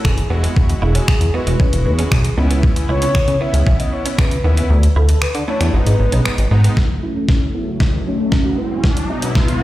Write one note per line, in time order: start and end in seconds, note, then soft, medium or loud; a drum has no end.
0.00 0.17 A3 medium
0.00 0.17 E4 medium
0.00 0.17 F#4 medium
0.05 0.23 F#1 medium
0.05 0.41 G#4 medium
0.05 finger snap loud
0.05 muted clean electric guitar stroke soft
0.05 kick loud
0.18 closed hi-hat medium
0.30 0.48 E1 medium
0.30 1.16 G#3 medium
0.30 0.41 B3 medium
0.30 1.16 E4 medium
0.30 1.16 F#4 medium
0.43 0.54 B3 medium
0.43 closed hi-hat medium
0.56 0.74 E1 loud
0.56 kick loud
0.69 muted clean electric guitar stroke soft
0.69 closed hi-hat medium
0.82 1.00 E1 loud
0.82 0.93 E4 medium
0.82 1.36 G#4 loud
0.95 1.06 C#4 medium
0.95 closed hi-hat medium
1.08 1.13 E2 medium
1.08 finger snap loud
1.08 muted clean electric guitar stroke soft
1.08 kick loud
1.21 1.30 E2 medium
1.21 closed hi-hat medium
1.34 1.55 G#3 medium
1.34 1.45 B3 medium
1.34 1.55 E4 medium
1.34 1.56 F#4 medium
1.34 1.85 B4 loud
1.47 1.56 E1 medium
1.47 1.58 G#3 medium
1.47 closed hi-hat medium
1.60 2.24 G#3 medium
1.60 1.71 C#4 medium
1.60 2.24 E4 medium
1.60 2.24 F#4 medium
1.60 kick loud
1.73 1.87 E1 loud
1.73 closed hi-hat medium
1.86 2.04 E2 loud
1.86 1.92 B4 loud
1.86 muted clean electric guitar stroke soft
1.99 2.10 C#4 medium
1.99 2.35 G#4 medium
1.99 closed hi-hat medium
2.12 2.29 B1 medium
2.12 finger snap loud
2.12 muted clean electric guitar stroke soft
2.12 kick loud
2.24 closed hi-hat medium
2.37 2.73 C#2 loud
2.37 3.22 B3 medium
2.37 2.48 B3 medium
2.37 3.22 C#4 medium
2.37 3.23 E4 medium
2.51 2.61 B3 medium
2.51 closed hi-hat medium
2.63 kick loud
2.76 muted clean electric guitar stroke soft
2.76 closed hi-hat medium
2.89 3.07 C#2 medium
2.89 3.00 E4 medium
2.89 3.42 C#5 loud
3.02 3.13 C#4 medium
3.02 closed hi-hat medium
3.15 3.20 C#3 medium
3.15 finger snap loud
3.15 muted clean electric guitar stroke soft
3.15 kick loud
3.28 3.37 C#3 medium
3.28 closed hi-hat medium
3.41 3.62 B3 medium
3.41 3.52 B3 medium
3.41 3.62 C#4 medium
3.41 3.62 E4 medium
3.41 3.66 E5 loud
3.53 3.63 C#2 medium
3.53 3.65 G#3 medium
3.53 closed hi-hat medium
3.66 3.84 B1 medium
3.66 4.30 B3 medium
3.66 3.77 C#4 medium
3.66 4.30 C#4 medium
3.66 4.31 E4 medium
3.66 3.81 E5 loud
3.66 kick loud
3.79 3.94 D#5 medium
3.79 closed hi-hat medium
3.93 4.18 C#5 loud
3.93 muted clean electric guitar stroke soft
4.06 4.16 C#4 medium
4.06 closed hi-hat medium
4.18 4.36 C#2 loud
4.18 4.55 B4 medium
4.18 finger snap loud
4.18 muted clean electric guitar stroke soft
4.18 kick loud
4.31 closed hi-hat medium
4.44 4.62 D#2 medium
4.44 4.70 B3 medium
4.44 4.55 B3 medium
4.44 4.70 C#4 medium
4.44 4.70 E4 medium
4.57 4.68 B3 medium
4.57 closed hi-hat medium
4.70 4.88 D2 loud
4.83 muted clean electric guitar stroke soft
4.83 closed hi-hat soft
4.96 5.14 D2 loud
4.96 5.07 E4 medium
4.96 5.20 A4 medium
5.09 5.20 D4 medium
5.09 closed hi-hat medium
5.22 5.27 D3 medium
5.22 5.34 B4 loud
5.22 finger snap loud
5.22 muted clean electric guitar stroke soft
5.35 5.44 D3 loud
5.35 closed hi-hat medium
5.48 5.69 A3 medium
5.48 5.59 C#4 medium
5.48 5.69 D4 medium
5.48 5.69 E4 medium
5.48 5.60 C#5 loud
5.61 5.70 E2 loud
5.61 5.72 B3 medium
5.61 finger snap medium
5.61 closed hi-hat medium
5.73 5.82 G#1 loud
5.73 6.37 G#3 medium
5.73 5.85 G#3 medium
5.73 6.37 B3 medium
5.73 6.37 D#4 medium
5.73 6.47 B4 medium
5.87 5.96 G#2 medium
5.87 closed hi-hat medium
6.00 6.08 G#1 medium
6.00 muted clean electric guitar stroke soft
6.12 6.21 B1 medium
6.12 6.23 C#4 medium
6.12 closed hi-hat medium
6.25 6.31 G#1 soft
6.25 finger snap loud
6.25 muted clean electric guitar stroke soft
6.38 6.47 G#1 medium
6.38 closed hi-hat medium
6.51 6.69 G#2 medium
6.51 6.77 G#3 medium
6.51 6.77 B3 medium
6.51 6.62 B3 medium
6.51 6.77 D#4 loud
6.64 6.75 B3 medium
6.64 closed hi-hat medium
6.76 6.85 F#2 medium
6.76 8.56 C#3 medium
6.76 9.63 F#3 medium
6.76 7.41 F#3 medium
6.76 8.56 A3 medium
6.76 7.41 A3 medium
6.76 7.41 E4 loud
6.76 9.63 F#4 medium
6.76 kick loud
6.76 snare medium
6.76 riser medium
6.90 6.98 E3 medium
6.90 muted clean electric guitar stroke soft
7.03 7.11 F#3 medium
7.03 7.51 C#4 medium
7.03 7.14 E4 medium
7.16 7.24 A3 medium
7.16 7.27 C#4 medium
7.29 7.37 C#4 medium
7.29 muted clean electric guitar stroke soft
7.29 kick loud
7.29 snare medium
7.54 7.97 F#3 medium
7.54 7.97 A3 medium
7.54 7.65 B3 medium
7.54 7.79 E4 loud
7.54 7.97 E4 medium
7.68 7.78 A3 medium
7.80 7.89 F#2 medium
7.80 7.91 C#4 medium
7.80 kick loud
7.80 snare medium
7.93 8.02 E3 medium
8.06 8.49 F#3 medium
8.06 8.15 F#3 medium
8.06 8.49 A3 medium
8.06 8.59 C#4 loud
8.06 8.49 D#4 medium
8.06 muted clean electric guitar stroke soft
8.19 8.28 A3 medium
8.19 8.30 C#4 medium
8.32 8.41 C#4 loud
8.32 kick loud
8.32 snare medium
8.45 8.53 F#4 medium
8.58 9.63 B2 medium
8.58 9.11 F#3 medium
8.58 9.63 G#3 medium
8.58 9.11 G#3 medium
8.58 8.69 B3 medium
8.58 8.84 E4 loud
8.58 9.11 E4 medium
8.71 8.82 B3 medium
8.84 8.92 E3 medium
8.84 kick loud
8.84 snare medium
8.97 9.05 F#3 medium
8.97 muted clean electric guitar stroke soft
8.97 closed hi-hat soft
9.10 9.18 G#3 medium
9.10 9.63 B3 medium
9.10 9.20 E4 medium
9.22 9.44 F#3 medium
9.22 9.44 G#3 medium
9.22 9.31 B3 medium
9.22 9.44 B3 medium
9.22 9.33 C#4 medium
9.22 closed hi-hat medium
9.35 9.44 E4 medium
9.35 muted clean electric guitar stroke soft
9.35 kick loud
9.35 snare medium
9.48 9.63 F#3 medium
9.48 9.63 G#3 medium
9.48 9.63 E4 medium
9.48 closed hi-hat medium